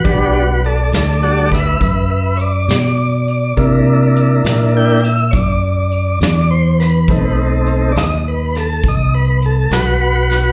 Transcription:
<<
  \new Staff \with { instrumentName = "Tonewheel organ" } { \time 12/8 \key e \minor \tempo 4. = 68 << { <fis' b'>8 <fis' b'>8 <a' d''>8 <a' d''>8 <a' d''>8 <b' e''>8 <b' e''>8 <b' e''>8 <cis'' d''>2 | r2 g''8 e''8 <cis'' d''>4. d''8 c''8 b'8~ | b'8 r4 <d'' dis''>8 b'8 a'8 dis''8 b'8 a'8 <fis' b'>4. | } \\ { <g d'>8 r4. <g d' fis'>8 r2. r8 | <bes d' e'>2 <bes d' e'>8 r2. r8 | <a c' dis'>4. r1 r8 | } >> }
  \new Staff \with { instrumentName = "Fingered electric bass" } { \clef bass \time 12/8 \key e \minor b,,4. d,4. fis,4. b,4. | c4. bes,4. fis,4. e,4. | b,,4. dis,4. c,4. b,,4. | }
  \new DrumStaff \with { instrumentName = "Drums" } \drummode { \time 12/8 <hh bd>4 hh8 <hh sn>4 <hh bd sn>8 <hh bd>4 hh8 <hh sn>4 hh8 | <hh bd>4 hh8 <hh sn>4 hh8 <hh bd>4 hh8 <hh sn>4 <hh sn>8 | <hh bd>4 hh8 <hh sn>4 <hh sn>8 <hh bd>4 hh8 <hh sn>4 <hh sn>8 | }
>>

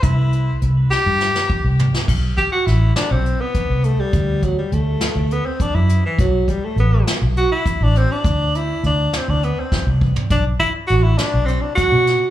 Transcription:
<<
  \new Staff \with { instrumentName = "Tenor saxophone" } { \time 7/8 \key a \dorian \tempo 4 = 102 e'4 r8 g'4. r8 | r8 g'16 fis'16 e'8 d'16 c'8 b8. a16 g16~ | g8 fis16 g16 a4 b16 c'16 d'16 e'8 e16 | fis8 g16 a16 b8 r8 fis'16 e'8 d'16 c'16 d'16~ |
d'8 e'8 d'8 c'16 d'16 b16 c'8 r8. | d'8 e'8 fis'16 e'16 d'8 c'16 d'16 fis'4 | }
  \new Staff \with { instrumentName = "Fingered electric bass" } { \clef bass \time 7/8 \key a \dorian c,4 c,8 r16 g,8 r8 c,8 r16 | b,,8 r8 a,,8 r16 b,,8 r8 c,8 r16 | d,4 d,8 r16 d,8 r8 fis,8 r16 | b,,8 r8 a,,8 r16 b,,8 r8 a,,8 r16 |
d,4 d,8 r16 d,8 r8 c,8 r16 | b,,8 r8 a,,8 r16 b,,8 r8 b,8 r16 | }
  \new DrumStaff \with { instrumentName = "Drums" } \drummode { \time 7/8 <hh bd>8 hh8 hh8 sn8 sn16 sn16 bd8 tomfh16 sn16 | <cymc bd>8 <hh bd>8 <hh sn>8 <hh sn>8 hh8 <hh bd>8 hh8 | <hh bd>8 <hh bd>8 hh8 <hh sn>8 hh8 <hh bd>8 hh8 | <hh bd>8 <hh bd>8 hh8 <hh sn>8 hh8 <hh bd>8 hh8 |
<hh bd>8 hh8 hh8 <hh sn>8 hh8 <bd sn>8 bd16 tomfh16 | <hh bd>8 <hh bd>8 hh8 <hh sn>8 hh8 <hh bd sn>8 <hh sn>8 | }
>>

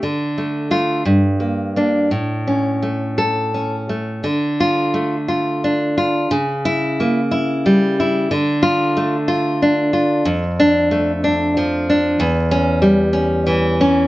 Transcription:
\new Staff \with { instrumentName = "Nylon-string guitar" } { \time 6/8 \key d \minor \tempo 4. = 59 << { r4 f'8 r4 d'8 | r4. a'4 r8 | r8 f'4 r4. | r8 e'4 r4. |
r8 f'4 r4. | r8 d'4 r4. | r8 cis'4 r4. | } \\ { d8 a8 a8 g,8 bes8 bes8 | a,8 cis'8 a4 cis'8 a8 | d4 a8 f'8 d'8 f'8 | cis4 ais8 e'8 g8 e'8 |
d4 a8 f'8 d'8 f'8 | f,4 a8 d'8 f8 d'8 | e,4 g8 cis'8 e8 cis'8 | } >> }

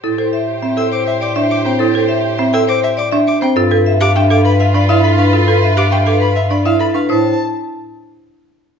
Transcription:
<<
  \new Staff \with { instrumentName = "Violin" } { \time 3/4 \key a \minor \tempo 4 = 102 r4 r16 e'''16 d'''16 e''16 d'''16 r16 d'''16 g''16 | r4 r16 e'''16 d'''16 e''16 d'''16 r16 d'''16 g''16 | r8. d'''16 g''16 d'''16 b''16 e''16 b''16 f''16 b''16 f''16 | r8. d'''16 g''16 d'''16 b''16 e''16 b''16 f''16 b''16 f''16 |
a''8 r2 r8 | }
  \new Staff \with { instrumentName = "Vibraphone" } { \time 3/4 \key a \minor a'16 c''16 e''16 r16 e''16 g''16 c''16 r16 d''16 e''16 r16 c''16 | a'16 c''16 e''16 r16 e''16 g''16 c''16 r16 d''16 e''16 r16 c''16 | a'16 b'16 e''16 f''16 e''16 f''16 b'16 f''16 d''16 e''16 a'16 b'16 | a'16 b'16 e''16 f''16 e''16 f''16 b'16 f''16 d''16 e''16 a'16 b'16 |
c''8 r2 r8 | }
  \new Staff \with { instrumentName = "String section" } { \time 3/4 \key a \minor <g' c''>2.~ | <g' c''>2~ <g' c''>8. r16 | <f' b'>2.~ | <f' b'>2~ <f' b'>8. r16 |
r2. | }
  \new Staff \with { instrumentName = "Marimba" } { \time 3/4 \key a \minor e'16 a'16 r8 c'16 a'16 r8. d'16 r16 c'16 | e'16 a'16 r8 c'16 a'16 r8. d'16 r16 c'16 | f'16 a'16 r16 g'16 d'16 a'16 r8 d'16 e'16 r16 d'16 | f'16 a'16 r16 g'16 d'16 a'16 r8 d'16 e'16 r16 d'16 |
e'8 r2 r8 | }
  \new Staff \with { instrumentName = "Bass clarinet" } { \clef bass \time 3/4 \key a \minor a,2.~ | a,2. | g,2.~ | g,2. |
a,8 r2 r8 | }
>>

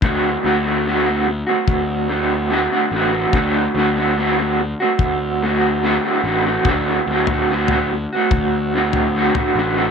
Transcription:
<<
  \new Staff \with { instrumentName = "Clean electric guitar" } { \time 4/4 \key d \mixolydian \tempo 4 = 72 <d a c' fis'>8 <d a c' fis'>16 <a c' fis'>16 <d a c' fis'>16 <a c' fis'>8 <a c' fis'>8. <d a c' fis'>8 <d a c' fis'>16 <a c' fis'>16 <d a c' fis'>16 <a c' fis'>16 | <d a c' fis'>8 <d a c' fis'>16 <a c' fis'>16 <d a c' fis'>16 <a c' fis'>8 <a c' fis'>8. <d a c' fis'>8 <d a c' fis'>16 <a c' fis'>16 <d a c' fis'>16 <a c' fis'>16 | <d a c' fis'>8 <d a c' fis'>16 <a c' fis'>16 <d a c' fis'>16 <a c' fis'>8 <a c' fis'>8. <d a c' fis'>8 <d a c' fis'>16 <a c' fis'>16 <d a c' fis'>16 <a c' fis'>16 | }
  \new Staff \with { instrumentName = "Picked electric bass" } { \clef bass \time 4/4 \key d \mixolydian d,8 d,4. d,4. a,,8 | d,8 d,4. d,4. a,,8 | d,8 d,4. d,4. a,,8 | }
  \new DrumStaff \with { instrumentName = "Drums" } \drummode { \time 4/4 bd4 r4 bd4 r4 | bd4 r4 bd4 r4 | <bd tomfh>8. tomfh16 r16 tomfh8. <bd tomfh>8. tomfh16 r16 tomfh8. | }
>>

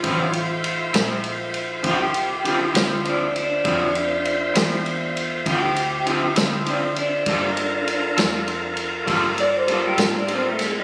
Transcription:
<<
  \new Staff \with { instrumentName = "Tonewheel organ" } { \time 12/8 \key d \minor \tempo 4. = 66 <fis cis'' f''>8 <f' c'' e''>1~ <f' c'' e''>4. | <fis' cis'' f''>8 <f' c'' e''>1~ <f' c'' e''>4. | <f' a' bes'>1. | }
  \new Staff \with { instrumentName = "Clean electric guitar" } { \time 12/8 \key d \minor f'2~ f'8 r8 g'4. f'8 d'8 d'8~ | d'2~ d'8 r8 g'4. f'8 d'8 d'8~ | d'2~ d'8 r4 d''16 c''16 a'16 g'16 f'16 d'16 c'16 a16 gis16 g16 | }
  \new Staff \with { instrumentName = "Clean electric guitar" } { \time 12/8 \key d \minor <d f c' e'>8 r4 <f c' e'>8 r4 <d f c' e'>8 r8 <d f c' e'>8 <f c' e'>8 <d f c' e'>8 r8 | <d f c' e'>8 r4 <f c' e'>8 r4 <d f c' e'>8 r8 <d f c' e'>8 <f c' e'>8 <d f c' e'>8 r8 | <g bes f' a'>8 r4 <bes f' a'>8 r4 <g bes f' a'>8 r8 <g bes f' a'>8 <bes f' a'>8 <g bes f' a'>8 r8 | }
  \new Staff \with { instrumentName = "Fingered electric bass" } { \clef bass \time 12/8 \key d \minor a,,4. bes,,4. c,4. d,4. | f,4. e,4. d,4. d4. | g,4. f,4. g,4. a,4. | }
  \new DrumStaff \with { instrumentName = "Drums" } \drummode { \time 12/8 <bd cymr>8 cymr8 cymr8 <cymr sn>8 cymr8 cymr8 <bd cymr>8 cymr8 cymr8 <cymr sn>8 cymr8 cymr8 | <bd cymr>8 cymr8 cymr8 <cymr sn>8 cymr8 cymr8 <bd cymr>8 cymr8 cymr8 <cymr sn>8 cymr8 cymr8 | <bd cymr>8 cymr8 cymr8 <cymr sn>8 cymr8 cymr8 <bd cymr>8 cymr8 cymr8 <cymr sn>8 cymr8 <cymr sn>8 | }
>>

